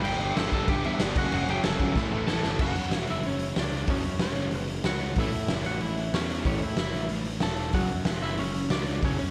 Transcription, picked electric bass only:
0.04 0.15 G1 medium
0.20 0.30 G1 loud
0.37 0.47 G1 medium
0.52 0.62 G1 medium
0.68 0.78 G1 loud
0.86 0.96 E2 medium
1.02 1.11 G1 medium
1.16 1.26 F#1 medium
1.33 1.43 F#1 medium
1.49 1.59 F#1 loud
1.66 1.76 F#1 medium
1.80 1.90 G1 medium
1.95 2.06 A1 loud
2.13 2.23 A1 loud
2.29 2.39 A1 medium
2.45 2.55 G1 medium
2.59 2.73 F#1 medium
2.75 2.90 F#2 medium
2.93 3.06 E1 medium
3.09 3.22 F#1 medium
3.25 3.52 F#1 medium
3.57 3.84 C#2 medium
3.88 4.02 F#1 medium
4.04 4.18 F#2 medium
4.21 4.35 E1 medium
4.37 4.51 F#1 medium
4.52 4.80 F#1 medium
4.85 5.12 C#2 medium
5.16 5.30 A1 medium
5.33 5.47 A2 medium
5.49 5.63 F#1 medium
5.66 5.79 A1 medium
5.82 6.09 A1 loud
6.13 6.41 E2 medium
6.45 6.59 A1 medium
6.61 6.76 A2 medium
6.78 6.92 F#1 medium
6.94 7.08 A1 medium
7.10 7.38 A1 medium
7.42 7.70 E1 medium
7.73 7.88 F#1 medium
7.90 8.04 F#2 medium
8.06 8.20 E1 medium
8.22 8.36 F#1 medium
8.39 8.67 F#1 loud
8.70 8.98 C#2 medium
9.02 9.16 F#1 medium
9.18 9.31 F#2 medium

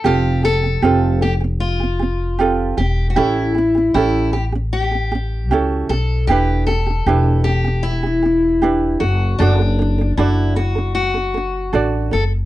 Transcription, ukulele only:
0.04 0.44 C4 medium
0.04 0.44 F4 medium
0.04 0.42 G4 medium
0.04 0.45 A4 medium
0.43 0.65 C4 medium
0.43 0.62 G4 medium
0.63 0.82 C4 soft
0.63 0.81 G4 soft
0.82 1.22 C4 medium
0.82 1.23 F4 medium
0.82 1.20 G4 medium
0.82 1.23 A4 medium
1.21 1.42 C4 medium
1.21 1.39 G4 soft
1.40 1.74 C4 soft
1.40 1.72 G4 soft
1.80 2.01 C4 soft
1.80 1.98 G4 soft
1.99 2.32 C4 medium
1.99 2.31 G4 soft
2.39 2.78 C4 medium
2.39 2.79 F4 medium
2.39 2.76 G4 medium
2.39 2.79 A4 medium
2.77 3.10 C4 medium
2.77 3.09 G4 medium
3.16 3.56 C#4 medium
3.16 3.56 E4 medium
3.16 3.53 G4 medium
3.16 3.56 A4 medium
3.55 3.76 C#4 medium
3.55 3.73 G4 medium
3.75 3.94 C#4 soft
3.75 3.93 G4 soft
3.95 4.34 C#4 medium
3.95 4.35 E4 medium
3.95 4.32 G4 medium
3.95 4.35 A4 medium
4.33 4.54 C#4 soft
4.33 4.51 G4 soft
4.52 4.85 C#4 medium
4.52 4.84 G4 soft
4.91 5.13 C#4 soft
4.91 5.10 G4 soft
5.12 5.44 C#4 medium
5.12 5.43 G4 medium
5.51 5.90 C#4 medium
5.51 5.90 E4 medium
5.51 5.89 G4 medium
5.51 5.91 A4 medium
5.90 6.23 C#4 medium
5.90 6.21 G4 medium
6.29 6.68 D4 medium
6.29 6.69 E4 medium
6.29 6.67 G4 medium
6.29 6.69 B4 medium
6.68 6.89 D4 medium
6.68 6.85 G4 medium
6.86 7.06 D4 soft
6.86 7.05 G4 soft
7.07 7.46 D4 medium
7.07 7.46 E4 medium
7.07 7.45 G4 medium
7.07 7.47 B4 medium
7.46 7.66 D4 soft
7.46 7.63 G4 soft
7.64 7.97 D4 soft
7.64 7.96 G4 soft
8.03 8.25 D4 soft
8.03 8.21 G4 soft
8.22 8.56 D4 medium
8.22 8.54 G4 medium
8.62 9.01 D4 medium
8.62 9.02 E4 medium
8.62 9.01 G4 medium
8.62 9.00 B4 medium
9.00 9.33 D4 medium
9.00 9.32 A4 medium
9.40 9.60 D4 medium
9.40 9.60 F#4 medium
9.40 9.57 A4 medium
9.40 9.58 D5 medium
9.58 9.80 D4 soft
9.58 9.78 A4 soft
9.79 10.00 D4 medium
9.79 9.97 A4 medium
9.98 10.17 D4 soft
9.98 10.16 A4 soft
10.17 10.57 D4 medium
10.17 10.57 F#4 medium
10.17 10.54 A4 medium
10.17 10.55 D5 medium
10.56 10.77 D4 medium
10.56 10.74 A4 soft
10.75 11.08 D4 soft
10.75 11.07 A4 soft
11.14 11.36 D4 soft
11.14 11.33 A4 soft
11.34 11.67 D4 medium
11.34 11.65 A4 medium
11.73 12.12 D4 medium
11.73 12.13 F#4 medium
11.73 12.10 A4 medium
11.73 12.11 D5 medium
12.11 12.45 D4 medium
12.11 12.43 A4 soft

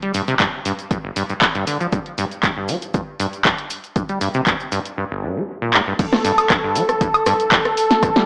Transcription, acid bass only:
0.03 0.12 G3 medium
0.14 0.22 G2 loud
0.28 0.35 C3 loud
0.40 0.47 G2 loud
0.65 0.73 G2 loud
0.91 0.98 G2 medium
1.04 1.11 G1 medium
1.16 1.24 G2 loud
1.30 1.34 G2 medium
1.55 1.65 G2 loud
1.67 1.78 D3 medium
1.80 1.87 F3 medium
1.92 2.00 G2 medium
2.18 2.25 G2 loud
2.43 2.51 G2 medium
2.57 2.70 G2 medium
2.69 2.76 G3 loud
2.94 3.02 G2 medium
3.20 3.27 G2 loud
3.45 3.52 G2 medium
3.96 4.03 G2 medium
4.09 4.19 G3 medium
4.21 4.29 G2 loud
4.35 4.41 C3 loud
4.47 4.54 G2 loud
4.72 4.79 G2 loud
4.97 5.05 G2 medium
5.11 5.24 G1 medium
5.23 5.38 G2 medium
5.36 5.43 A#3 loud
5.62 5.75 A#2 medium
5.74 5.81 G2 loud
5.87 5.94 G2 medium
5.99 6.07 G2 medium
6.25 6.32 G2 loud
6.50 6.57 G2 medium
6.64 6.77 G2 medium
6.76 6.83 G3 loud
7.01 7.08 G2 medium
7.26 7.34 G2 loud
7.52 7.59 G2 medium
8.03 8.10 G2 medium
8.16 8.26 G3 medium

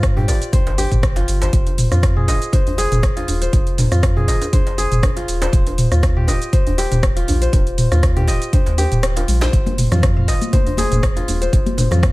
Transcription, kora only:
0.00 1.16 F4 medium
0.00 0.16 G4 loud
0.00 0.53 C5 medium
0.16 0.78 G4 medium
0.28 1.39 D5 medium
0.53 1.41 C5 medium
0.78 2.23 G4 loud
1.17 1.91 F4 medium
1.42 2.53 C5 medium
1.92 3.16 F4 medium
2.17 2.78 G#4 medium
2.28 3.35 D#5 medium
2.53 3.41 C5 medium
2.78 4.14 G#4 loud
3.17 3.91 F4 medium
3.42 4.53 C5 medium
3.92 5.16 F4 medium
4.17 4.78 G#4 medium
4.28 5.35 D#5 medium
4.53 5.41 C5 medium
4.78 6.14 G#4 loud
5.17 5.91 F4 medium
5.42 6.52 C5 medium
5.92 7.16 F4 medium
6.17 6.78 G4 medium
6.28 7.35 D#5 medium
6.53 7.41 C5 medium
6.78 8.16 G4 loud
7.16 7.91 F4 medium
7.42 8.53 C5 medium
7.92 9.16 F4 medium
8.17 8.78 G4 medium
8.28 9.35 D#5 medium
8.53 9.41 C5 medium
8.78 10.19 G4 loud
9.17 9.91 F4 medium
9.42 10.53 C5 medium
9.92 11.16 F4 medium
10.17 11.16 F5 medium
10.28 11.35 D#5 medium
10.53 11.41 C5 medium
10.78 12.12 G#4 loud
11.16 11.91 F4 medium
11.41 12.12 C5 medium
11.91 12.12 F4 medium

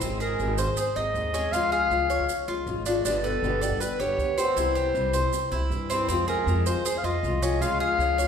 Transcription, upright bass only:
0.01 0.37 G#1 medium
0.39 0.66 G#1 loud
0.67 0.95 G#2 medium
0.96 1.14 G#1 medium
1.15 1.51 D#2 medium
1.52 1.89 C#2 medium
1.90 2.18 C#2 loud
2.19 2.46 C#3 medium
2.48 2.66 C#2 medium
2.67 3.03 G#1 loud
3.05 3.41 G1 medium
3.42 3.70 G1 loud
3.71 3.98 G2 medium
4.00 4.17 G1 medium
4.18 4.55 D2 loud
4.56 4.93 C2 medium
4.95 5.22 C2 loud
5.23 5.50 C3 medium
5.52 5.70 C2 medium
5.70 6.07 G2 medium
6.08 6.45 F2 medium
6.47 6.74 F2 loud
7.04 7.22 F2 medium
7.23 7.59 C2 loud
7.61 7.97 C#2 medium
7.98 8.26 C#2 loud

